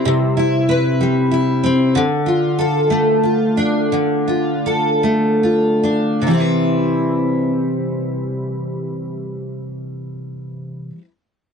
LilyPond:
\new Staff \with { instrumentName = "Steel-string acoustic guitar" } { \time 6/8 \key c \major \tempo 4. = 52 <c g c' e' b'>8 e'8 b'8 g8 e'8 c'8 | d8 f'8 a'8 a8 f'8 d'8 | d8 f'8 a'8 a8 f'8 d'8 | <c e g c' e' b'>2.~ |
<c e g c' e' b'>2. | }